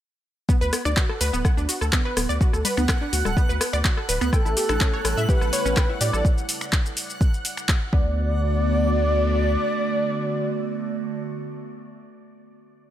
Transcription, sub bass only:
0, 0, Header, 1, 2, 480
1, 0, Start_track
1, 0, Key_signature, 2, "major"
1, 0, Tempo, 480000
1, 488, Time_signature, 4, 2, 24, 8
1, 12903, End_track
2, 0, Start_track
2, 0, Title_t, "Sub bass"
2, 0, Program_c, 0, 38
2, 614, Note_on_c, 0, 38, 74
2, 707, Note_off_c, 0, 38, 0
2, 854, Note_on_c, 0, 38, 79
2, 947, Note_off_c, 0, 38, 0
2, 1209, Note_on_c, 0, 38, 90
2, 1310, Note_off_c, 0, 38, 0
2, 1334, Note_on_c, 0, 26, 84
2, 1427, Note_off_c, 0, 26, 0
2, 1574, Note_on_c, 0, 38, 75
2, 1667, Note_off_c, 0, 38, 0
2, 1815, Note_on_c, 0, 38, 83
2, 1907, Note_off_c, 0, 38, 0
2, 2168, Note_on_c, 0, 26, 95
2, 2270, Note_off_c, 0, 26, 0
2, 2293, Note_on_c, 0, 38, 83
2, 2387, Note_off_c, 0, 38, 0
2, 2535, Note_on_c, 0, 38, 75
2, 2627, Note_off_c, 0, 38, 0
2, 2775, Note_on_c, 0, 38, 81
2, 2867, Note_off_c, 0, 38, 0
2, 3129, Note_on_c, 0, 38, 97
2, 3230, Note_off_c, 0, 38, 0
2, 3254, Note_on_c, 0, 26, 82
2, 3347, Note_off_c, 0, 26, 0
2, 3494, Note_on_c, 0, 38, 76
2, 3587, Note_off_c, 0, 38, 0
2, 3734, Note_on_c, 0, 38, 83
2, 3827, Note_off_c, 0, 38, 0
2, 4088, Note_on_c, 0, 26, 99
2, 4190, Note_off_c, 0, 26, 0
2, 4214, Note_on_c, 0, 38, 84
2, 4307, Note_off_c, 0, 38, 0
2, 4454, Note_on_c, 0, 33, 73
2, 4547, Note_off_c, 0, 33, 0
2, 4694, Note_on_c, 0, 33, 79
2, 4787, Note_off_c, 0, 33, 0
2, 5049, Note_on_c, 0, 33, 94
2, 5150, Note_off_c, 0, 33, 0
2, 5173, Note_on_c, 0, 45, 82
2, 5267, Note_off_c, 0, 45, 0
2, 5413, Note_on_c, 0, 33, 76
2, 5506, Note_off_c, 0, 33, 0
2, 5653, Note_on_c, 0, 33, 82
2, 5746, Note_off_c, 0, 33, 0
2, 6008, Note_on_c, 0, 45, 95
2, 6110, Note_off_c, 0, 45, 0
2, 6133, Note_on_c, 0, 33, 83
2, 6227, Note_off_c, 0, 33, 0
2, 7928, Note_on_c, 0, 38, 98
2, 9568, Note_off_c, 0, 38, 0
2, 12903, End_track
0, 0, End_of_file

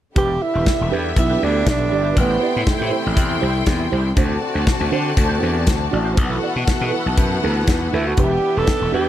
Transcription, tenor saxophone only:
0, 0, Header, 1, 2, 480
1, 0, Start_track
1, 0, Key_signature, 1, "minor"
1, 0, Tempo, 500835
1, 159, Time_signature, 4, 2, 24, 8
1, 8708, End_track
2, 0, Start_track
2, 0, Title_t, "Tenor saxophone"
2, 0, Program_c, 0, 66
2, 169, Note_on_c, 0, 67, 100
2, 408, Note_on_c, 0, 64, 92
2, 422, Note_off_c, 0, 67, 0
2, 884, Note_off_c, 0, 64, 0
2, 1138, Note_on_c, 0, 64, 92
2, 1382, Note_on_c, 0, 62, 98
2, 1396, Note_off_c, 0, 64, 0
2, 1610, Note_off_c, 0, 62, 0
2, 1627, Note_on_c, 0, 62, 88
2, 2060, Note_off_c, 0, 62, 0
2, 2103, Note_on_c, 0, 59, 80
2, 2538, Note_off_c, 0, 59, 0
2, 2589, Note_on_c, 0, 57, 68
2, 3022, Note_off_c, 0, 57, 0
2, 7613, Note_on_c, 0, 64, 72
2, 7737, Note_on_c, 0, 66, 76
2, 7751, Note_off_c, 0, 64, 0
2, 7854, Note_on_c, 0, 67, 87
2, 7868, Note_off_c, 0, 66, 0
2, 8221, Note_on_c, 0, 69, 102
2, 8235, Note_off_c, 0, 67, 0
2, 8567, Note_off_c, 0, 69, 0
2, 8574, Note_on_c, 0, 67, 88
2, 8708, Note_off_c, 0, 67, 0
2, 8708, End_track
0, 0, End_of_file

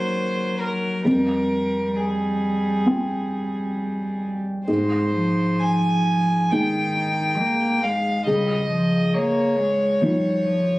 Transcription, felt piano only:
0, 0, Header, 1, 2, 480
1, 0, Start_track
1, 0, Key_signature, -4, "major"
1, 0, Tempo, 909091
1, 557, Time_signature, 4, 2, 24, 8
1, 3438, Tempo, 875912
1, 5782, End_track
2, 0, Start_track
2, 0, Title_t, "Felt piano"
2, 0, Program_c, 0, 0
2, 0, Control_c, 0, 64, 127
2, 0, Note_on_c, 0, 39, 41
2, 0, Note_on_c, 0, 61, 28
2, 0, Note_on_c, 0, 66, 32
2, 0, Note_on_c, 0, 70, 35
2, 535, Note_off_c, 0, 39, 0
2, 535, Note_off_c, 0, 61, 0
2, 536, Note_off_c, 0, 66, 0
2, 537, Note_off_c, 0, 70, 0
2, 552, Note_on_c, 0, 41, 35
2, 565, Control_c, 0, 64, 0
2, 649, Control_c, 0, 64, 127
2, 1510, Note_on_c, 0, 60, 23
2, 1515, Note_on_c, 0, 65, 23
2, 1516, Note_on_c, 0, 79, 25
2, 2446, Note_off_c, 0, 41, 0
2, 2449, Note_off_c, 0, 60, 0
2, 2451, Note_off_c, 0, 65, 0
2, 2452, Note_off_c, 0, 79, 0
2, 2469, Note_on_c, 0, 44, 33
2, 2479, Control_c, 0, 64, 0
2, 2571, Control_c, 0, 64, 127
2, 3441, Note_on_c, 0, 56, 22
2, 3443, Note_on_c, 0, 63, 26
2, 3443, Note_on_c, 0, 68, 26
2, 4377, Note_off_c, 0, 44, 0
2, 4380, Note_off_c, 0, 56, 0
2, 4381, Note_off_c, 0, 63, 0
2, 4381, Note_off_c, 0, 68, 0
2, 4399, Note_on_c, 0, 37, 39
2, 4409, Control_c, 0, 64, 0
2, 4498, Control_c, 0, 64, 127
2, 5360, Note_on_c, 0, 53, 28
2, 5363, Note_on_c, 0, 63, 26
2, 5367, Note_on_c, 0, 65, 29
2, 5782, Note_off_c, 0, 37, 0
2, 5782, Note_off_c, 0, 53, 0
2, 5782, Note_off_c, 0, 63, 0
2, 5782, Note_off_c, 0, 65, 0
2, 5782, End_track
0, 0, End_of_file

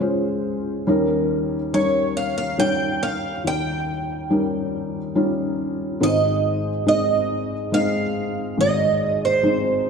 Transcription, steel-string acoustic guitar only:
0, 0, Header, 1, 2, 480
1, 0, Start_track
1, 0, Tempo, 857143
1, 483, Time_signature, 3, 2, 24, 8
1, 5542, End_track
2, 0, Start_track
2, 0, Title_t, "Steel-string acoustic guitar"
2, 0, Program_c, 0, 25
2, 975, Note_on_c, 0, 73, 72
2, 1192, Note_off_c, 0, 73, 0
2, 1214, Note_on_c, 0, 77, 79
2, 1324, Note_off_c, 0, 77, 0
2, 1331, Note_on_c, 0, 77, 75
2, 1450, Note_off_c, 0, 77, 0
2, 1453, Note_on_c, 0, 79, 88
2, 1693, Note_off_c, 0, 79, 0
2, 1695, Note_on_c, 0, 77, 84
2, 1912, Note_off_c, 0, 77, 0
2, 1945, Note_on_c, 0, 79, 82
2, 2872, Note_off_c, 0, 79, 0
2, 3378, Note_on_c, 0, 75, 84
2, 3830, Note_off_c, 0, 75, 0
2, 3855, Note_on_c, 0, 75, 75
2, 4332, Note_off_c, 0, 75, 0
2, 4334, Note_on_c, 0, 77, 82
2, 4817, Note_off_c, 0, 77, 0
2, 4819, Note_on_c, 0, 75, 84
2, 5149, Note_off_c, 0, 75, 0
2, 5179, Note_on_c, 0, 72, 73
2, 5542, Note_off_c, 0, 72, 0
2, 5542, End_track
0, 0, End_of_file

